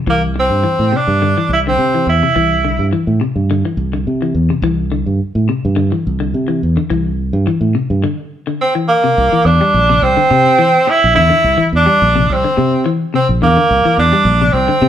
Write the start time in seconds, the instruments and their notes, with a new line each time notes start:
0.07 fingered electric bass C2, clean electric guitar E3, tenor saxophone A#3
0.36 tenor saxophone C4, muted clean electric guitar stroke
0.50 fingered electric bass G2
0.64 clean electric guitar E3
0.79 fingered electric bass A2
0.93 clean electric guitar C3, tenor saxophone D4
1.08 fingered electric bass G2
1.22 clean electric guitar D3
1.38 clean electric guitar E3
1.49 fingered electric bass C2, tenor saxophone E4
1.67 clean electric guitar D3, tenor saxophone C4
1.78 fingered electric bass C3
1.95 clean electric guitar E3
2.06 fingered electric bass E2, tenor saxophone E4
2.23 clean electric guitar C3
2.36 fingered electric bass C2, clean electric guitar E3
2.65 clean electric guitar D3
2.79 fingered electric bass G2
2.93 clean electric guitar E3
3.07 fingered electric bass A2
3.21 clean electric guitar C3
3.36 fingered electric bass G2
3.51 clean electric guitar D3
3.65 clean electric guitar E3
3.77 fingered electric bass C2
3.93 clean electric guitar D3
4.07 fingered electric bass C3
4.22 clean electric guitar E3
4.35 fingered electric bass E2
4.50 clean electric guitar C3
4.62 fingered electric bass C2, clean electric guitar E3
4.92 clean electric guitar D3
5.06 fingered electric bass G2
5.35 fingered electric bass A2
5.49 clean electric guitar C3
5.65 fingered electric bass G2
5.76 clean electric guitar D3
5.92 clean electric guitar E3
6.07 fingered electric bass C2
6.20 clean electric guitar D3
6.34 fingered electric bass C3
6.48 clean electric guitar E3
6.63 fingered electric bass E2
6.77 clean electric guitar D3
6.90 fingered electric bass C2, clean electric guitar E3
7.33 fingered electric bass G2
7.47 clean electric guitar E3
7.61 fingered electric bass A2
7.75 clean electric guitar C3
7.90 fingered electric bass G2
8.04 clean electric guitar D3
8.47 clean electric guitar D3
8.61 tenor saxophone C4
8.75 clean electric guitar E3
8.88 tenor saxophone A#3
9.04 clean electric guitar C3
9.18 fingered electric bass C2
9.33 clean electric guitar E3
9.45 fingered electric bass E2, tenor saxophone D4
9.61 clean electric guitar G3
9.74 fingered electric bass A#1
9.89 clean electric guitar C3
10.02 fingered electric bass C2, tenor saxophone C4
10.17 clean electric guitar D3
10.31 fingered electric bass C3, clean electric guitar C3
10.59 clean electric guitar E3
10.87 tenor saxophone E4, muted clean electric guitar stroke
11.04 fingered electric bass A#1
11.15 fingered electric bass E2, clean electric guitar D3, tenor saxophone E4
11.30 clean electric guitar D3
11.44 fingered electric bass C2
11.58 clean electric guitar E3, muted fingered electric bass stroke
11.73 fingered electric bass E2, tenor saxophone D4
11.86 clean electric guitar G3
12.02 fingered electric bass A#1
12.16 clean electric guitar C3
12.30 fingered electric bass C2, tenor saxophone C4
12.44 clean electric guitar D3
12.57 clean electric guitar C3, fingered electric bass C3
12.86 clean electric guitar E3
13.14 clean electric guitar C3, tenor saxophone C4
13.29 fingered electric bass A#1
13.42 fingered electric bass E2, clean electric guitar D3, tenor saxophone A#3
13.57 clean electric guitar D3
13.71 fingered electric bass C2
13.85 clean electric guitar E3, muted fingered electric bass stroke
13.98 fingered electric bass E2, tenor saxophone D4
14.13 clean electric guitar G3
14.25 fingered electric bass A#1
14.42 clean electric guitar C3
14.52 fingered electric bass C2, tenor saxophone C4
14.68 clean electric guitar D3
14.82 fingered electric bass C3, clean electric guitar C3